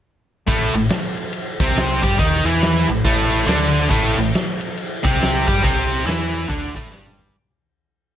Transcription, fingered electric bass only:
0, 0, Header, 1, 2, 480
1, 0, Start_track
1, 0, Tempo, 429492
1, 539, Time_signature, 4, 2, 24, 8
1, 9120, End_track
2, 0, Start_track
2, 0, Title_t, "Fingered electric bass"
2, 0, Program_c, 0, 33
2, 533, Note_on_c, 0, 33, 90
2, 815, Note_off_c, 0, 33, 0
2, 821, Note_on_c, 0, 33, 72
2, 994, Note_off_c, 0, 33, 0
2, 1785, Note_on_c, 0, 36, 97
2, 2235, Note_off_c, 0, 36, 0
2, 2265, Note_on_c, 0, 43, 96
2, 2434, Note_off_c, 0, 43, 0
2, 2442, Note_on_c, 0, 39, 90
2, 2726, Note_off_c, 0, 39, 0
2, 2733, Note_on_c, 0, 40, 88
2, 3188, Note_off_c, 0, 40, 0
2, 3232, Note_on_c, 0, 33, 88
2, 3397, Note_off_c, 0, 33, 0
2, 3403, Note_on_c, 0, 33, 93
2, 3853, Note_off_c, 0, 33, 0
2, 3877, Note_on_c, 0, 38, 98
2, 4330, Note_off_c, 0, 38, 0
2, 4367, Note_on_c, 0, 33, 87
2, 4650, Note_off_c, 0, 33, 0
2, 4673, Note_on_c, 0, 33, 75
2, 4839, Note_off_c, 0, 33, 0
2, 5641, Note_on_c, 0, 36, 92
2, 6086, Note_off_c, 0, 36, 0
2, 6125, Note_on_c, 0, 43, 99
2, 6287, Note_off_c, 0, 43, 0
2, 6304, Note_on_c, 0, 36, 86
2, 6747, Note_off_c, 0, 36, 0
2, 6777, Note_on_c, 0, 40, 93
2, 7224, Note_off_c, 0, 40, 0
2, 7265, Note_on_c, 0, 38, 91
2, 7543, Note_off_c, 0, 38, 0
2, 7560, Note_on_c, 0, 33, 102
2, 7726, Note_off_c, 0, 33, 0
2, 7746, Note_on_c, 0, 31, 93
2, 8189, Note_off_c, 0, 31, 0
2, 9120, End_track
0, 0, End_of_file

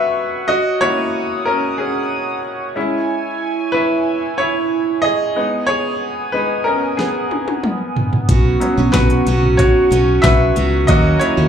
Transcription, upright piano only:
0, 0, Header, 1, 2, 480
1, 0, Start_track
1, 0, Key_signature, 5, "major"
1, 0, Tempo, 650759
1, 356, Time_signature, 4, 2, 24, 8
1, 8470, End_track
2, 0, Start_track
2, 0, Title_t, "Upright piano"
2, 0, Program_c, 0, 0
2, 0, Control_c, 0, 64, 127
2, 0, Note_on_c, 0, 59, 42
2, 0, Note_on_c, 0, 61, 42
2, 0, Note_on_c, 0, 63, 63
2, 0, Note_on_c, 0, 66, 66
2, 0, Note_on_c, 0, 71, 76
2, 0, Note_on_c, 0, 73, 91
2, 0, Note_on_c, 0, 76, 96
2, 329, Note_off_c, 0, 71, 0
2, 352, Note_on_c, 0, 75, 102
2, 359, Note_off_c, 0, 66, 0
2, 359, Note_on_c, 0, 66, 75
2, 366, Control_c, 0, 64, 0
2, 367, Note_off_c, 0, 61, 0
2, 368, Note_off_c, 0, 76, 0
2, 370, Note_off_c, 0, 63, 0
2, 372, Note_off_c, 0, 73, 0
2, 373, Note_off_c, 0, 59, 0
2, 499, Control_c, 0, 64, 127
2, 576, Note_off_c, 0, 75, 0
2, 580, Note_off_c, 0, 66, 0
2, 596, Note_on_c, 0, 58, 54
2, 596, Note_on_c, 0, 73, 106
2, 599, Note_on_c, 0, 61, 49
2, 604, Note_on_c, 0, 66, 60
2, 605, Note_on_c, 0, 64, 72
2, 1046, Note_off_c, 0, 73, 0
2, 1050, Note_off_c, 0, 64, 0
2, 1073, Note_off_c, 0, 61, 0
2, 1073, Note_on_c, 0, 70, 79
2, 1084, Note_on_c, 0, 61, 66
2, 1303, Note_off_c, 0, 61, 0
2, 1313, Note_on_c, 0, 68, 70
2, 1321, Note_off_c, 0, 70, 0
2, 1324, Note_on_c, 0, 61, 51
2, 1764, Note_off_c, 0, 68, 0
2, 1769, Note_off_c, 0, 61, 0
2, 2005, Note_off_c, 0, 58, 0
2, 2009, Note_off_c, 0, 66, 0
2, 2031, Note_on_c, 0, 56, 56
2, 2035, Note_on_c, 0, 61, 54
2, 2042, Note_on_c, 0, 64, 64
2, 2045, Control_c, 0, 64, 0
2, 2175, Control_c, 0, 64, 127
2, 2723, Note_off_c, 0, 56, 0
2, 2725, Note_off_c, 0, 61, 0
2, 2728, Note_off_c, 0, 64, 0
2, 2744, Note_on_c, 0, 71, 90
2, 2761, Note_on_c, 0, 64, 71
2, 3208, Note_off_c, 0, 64, 0
2, 3229, Note_on_c, 0, 73, 83
2, 3242, Note_on_c, 0, 64, 70
2, 3243, Note_off_c, 0, 71, 0
2, 3688, Note_off_c, 0, 64, 0
2, 3700, Note_on_c, 0, 75, 101
2, 3719, Note_on_c, 0, 68, 80
2, 3725, Note_off_c, 0, 73, 0
2, 3951, Note_on_c, 0, 56, 61
2, 3956, Note_on_c, 0, 59, 54
2, 3958, Note_on_c, 0, 63, 66
2, 3962, Control_c, 0, 64, 0
2, 4112, Control_c, 0, 64, 127
2, 4166, Note_off_c, 0, 68, 0
2, 4179, Note_on_c, 0, 73, 100
2, 4194, Note_on_c, 0, 68, 78
2, 4201, Note_off_c, 0, 75, 0
2, 4644, Note_off_c, 0, 68, 0
2, 4661, Note_off_c, 0, 56, 0
2, 4661, Note_off_c, 0, 59, 0
2, 4664, Note_on_c, 0, 71, 83
2, 4666, Note_off_c, 0, 63, 0
2, 4672, Note_on_c, 0, 56, 49
2, 4673, Note_on_c, 0, 59, 42
2, 4677, Note_on_c, 0, 63, 64
2, 4680, Note_off_c, 0, 73, 0
2, 4888, Note_off_c, 0, 56, 0
2, 4889, Note_off_c, 0, 59, 0
2, 4891, Note_off_c, 0, 71, 0
2, 4899, Note_off_c, 0, 63, 0
2, 4899, Note_on_c, 0, 70, 79
2, 4915, Note_on_c, 0, 61, 63
2, 5137, Note_off_c, 0, 61, 0
2, 5143, Note_on_c, 0, 68, 65
2, 5153, Note_off_c, 0, 70, 0
2, 5155, Note_on_c, 0, 59, 55
2, 5838, Note_off_c, 0, 68, 0
2, 5844, Note_off_c, 0, 59, 0
2, 6122, Control_c, 0, 64, 0
2, 6233, Control_c, 0, 64, 127
2, 6346, Note_on_c, 0, 54, 54
2, 6352, Note_on_c, 0, 59, 50
2, 6358, Note_on_c, 0, 61, 56
2, 6580, Note_on_c, 0, 71, 84
2, 6594, Note_on_c, 0, 66, 64
2, 7044, Note_off_c, 0, 66, 0
2, 7061, Note_on_c, 0, 73, 87
2, 7078, Note_on_c, 0, 66, 68
2, 7081, Note_off_c, 0, 71, 0
2, 7517, Note_off_c, 0, 73, 0
2, 7525, Note_off_c, 0, 66, 0
2, 7536, Note_on_c, 0, 76, 103
2, 7556, Note_on_c, 0, 71, 80
2, 8000, Note_off_c, 0, 54, 0
2, 8003, Note_off_c, 0, 59, 0
2, 8005, Note_off_c, 0, 71, 0
2, 8006, Note_off_c, 0, 61, 0
2, 8019, Note_on_c, 0, 75, 104
2, 8026, Note_on_c, 0, 54, 54
2, 8030, Note_on_c, 0, 58, 55
2, 8033, Note_on_c, 0, 61, 66
2, 8034, Note_on_c, 0, 66, 82
2, 8039, Note_off_c, 0, 76, 0
2, 8041, Control_c, 0, 64, 0
2, 8162, Control_c, 0, 64, 127
2, 8248, Note_off_c, 0, 75, 0
2, 8256, Note_off_c, 0, 66, 0
2, 8257, Note_on_c, 0, 73, 90
2, 8269, Note_on_c, 0, 64, 70
2, 8470, Note_off_c, 0, 54, 0
2, 8470, Note_off_c, 0, 58, 0
2, 8470, Note_off_c, 0, 61, 0
2, 8470, Note_off_c, 0, 64, 0
2, 8470, Note_off_c, 0, 73, 0
2, 8470, End_track
0, 0, End_of_file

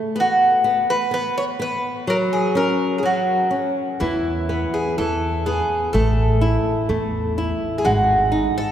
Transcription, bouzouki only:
0, 0, Header, 1, 2, 480
1, 0, Start_track
1, 0, Tempo, 958466
1, 85, Time_signature, 2, 2, 24, 8
1, 4366, End_track
2, 0, Start_track
2, 0, Title_t, "Bouzouki"
2, 0, Program_c, 0, 25
2, 100, Note_on_c, 0, 66, 83
2, 428, Note_off_c, 0, 66, 0
2, 451, Note_on_c, 0, 71, 92
2, 557, Note_off_c, 0, 71, 0
2, 570, Note_on_c, 0, 71, 96
2, 687, Note_off_c, 0, 71, 0
2, 689, Note_on_c, 0, 73, 101
2, 720, Note_off_c, 0, 73, 0
2, 810, Note_on_c, 0, 71, 91
2, 1049, Note_off_c, 0, 71, 0
2, 1051, Note_on_c, 0, 70, 85
2, 1082, Note_off_c, 0, 70, 0
2, 1166, Note_on_c, 0, 68, 73
2, 1284, Note_off_c, 0, 68, 0
2, 1286, Note_on_c, 0, 70, 78
2, 1492, Note_off_c, 0, 70, 0
2, 1494, Note_on_c, 0, 68, 54
2, 1524, Note_off_c, 0, 68, 0
2, 1530, Note_on_c, 0, 66, 75
2, 1868, Note_off_c, 0, 66, 0
2, 2005, Note_on_c, 0, 64, 68
2, 2372, Note_on_c, 0, 68, 73
2, 2382, Note_off_c, 0, 64, 0
2, 2492, Note_off_c, 0, 68, 0
2, 2494, Note_on_c, 0, 69, 75
2, 2733, Note_off_c, 0, 69, 0
2, 2735, Note_on_c, 0, 68, 74
2, 2967, Note_off_c, 0, 68, 0
2, 2969, Note_on_c, 0, 69, 76
2, 3670, Note_off_c, 0, 69, 0
2, 3897, Note_on_c, 0, 68, 70
2, 3931, Note_off_c, 0, 68, 0
2, 3932, Note_on_c, 0, 66, 82
2, 4295, Note_on_c, 0, 69, 100
2, 4299, Note_off_c, 0, 66, 0
2, 4366, Note_off_c, 0, 69, 0
2, 4366, End_track
0, 0, End_of_file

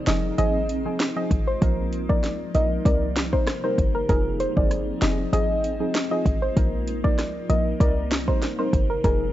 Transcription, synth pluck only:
0, 0, Header, 1, 2, 480
1, 0, Start_track
1, 0, Key_signature, -3, "minor"
1, 0, Tempo, 618557
1, 1256, Time_signature, 4, 2, 24, 8
1, 7238, End_track
2, 0, Start_track
2, 0, Title_t, "Synth pluck"
2, 0, Program_c, 0, 84
2, 58, Note_on_c, 0, 75, 75
2, 143, Note_off_c, 0, 75, 0
2, 297, Note_on_c, 0, 75, 96
2, 642, Note_off_c, 0, 75, 0
2, 905, Note_on_c, 0, 75, 74
2, 980, Note_off_c, 0, 75, 0
2, 1145, Note_on_c, 0, 72, 78
2, 1220, Note_off_c, 0, 72, 0
2, 1624, Note_on_c, 0, 74, 79
2, 1699, Note_off_c, 0, 74, 0
2, 1978, Note_on_c, 0, 75, 73
2, 2063, Note_off_c, 0, 75, 0
2, 2216, Note_on_c, 0, 74, 88
2, 2302, Note_off_c, 0, 74, 0
2, 2582, Note_on_c, 0, 72, 87
2, 2658, Note_off_c, 0, 72, 0
2, 2823, Note_on_c, 0, 72, 77
2, 2899, Note_off_c, 0, 72, 0
2, 3063, Note_on_c, 0, 70, 70
2, 3139, Note_off_c, 0, 70, 0
2, 3175, Note_on_c, 0, 70, 107
2, 3261, Note_off_c, 0, 70, 0
2, 3415, Note_on_c, 0, 72, 88
2, 3501, Note_off_c, 0, 72, 0
2, 3543, Note_on_c, 0, 74, 74
2, 3619, Note_off_c, 0, 74, 0
2, 3896, Note_on_c, 0, 75, 76
2, 3982, Note_off_c, 0, 75, 0
2, 4135, Note_on_c, 0, 75, 91
2, 4481, Note_off_c, 0, 75, 0
2, 4744, Note_on_c, 0, 75, 74
2, 4819, Note_off_c, 0, 75, 0
2, 4983, Note_on_c, 0, 72, 81
2, 5059, Note_off_c, 0, 72, 0
2, 5463, Note_on_c, 0, 74, 78
2, 5539, Note_off_c, 0, 74, 0
2, 5816, Note_on_c, 0, 75, 74
2, 5902, Note_off_c, 0, 75, 0
2, 6056, Note_on_c, 0, 74, 83
2, 6141, Note_off_c, 0, 74, 0
2, 6425, Note_on_c, 0, 72, 85
2, 6500, Note_off_c, 0, 72, 0
2, 6664, Note_on_c, 0, 72, 82
2, 6739, Note_off_c, 0, 72, 0
2, 6905, Note_on_c, 0, 70, 71
2, 6980, Note_off_c, 0, 70, 0
2, 7018, Note_on_c, 0, 70, 108
2, 7103, Note_off_c, 0, 70, 0
2, 7238, End_track
0, 0, End_of_file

